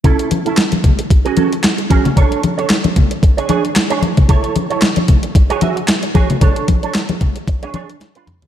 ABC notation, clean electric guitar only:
X:1
M:4/4
L:1/16
Q:"Swing 16ths" 1/4=113
K:A
V:1 name="Clean electric guitar"
[CEA]2 z [CEA] z4 z [CFG] [CFA] z3 [CFG] z | [DAc]2 z [DAc] z4 z [DGc] [DGc] z2 [DGc] z2 | [EAc]2 z [EAc] z4 z [FGc] [FGe] z3 [FGc] z | [DAc]2 z [DAc] z4 z [DGc] [DGc] z2 [D=FB] z2 |]